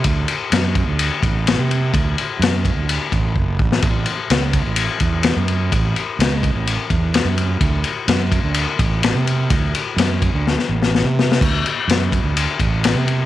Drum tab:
CC |----------------|----------------|----------------|----------------|
RD |x-x-x-x-x-x-x-x-|x-x-x-x-x-x-----|x-x-x-x-x-x-x-x-|x-x-x-x-x-x-x-x-|
SD |----o-------o---|----o----------o|----o-------o---|----o-------o---|
BD |o-----o---o-----|o-----o---o-o-o-|o-----o---o-----|o-----o---o-----|

CC |----------------|----------------|x---------------|
RD |x-x-x-x-x-x-x-x-|x-x-x-x---------|--x-x-x-x-x-x-x-|
SD |----o-------o---|----o---oo-oo-oo|----o-------o---|
BD |o-----o---o-----|o-----o---------|o-----o---o-----|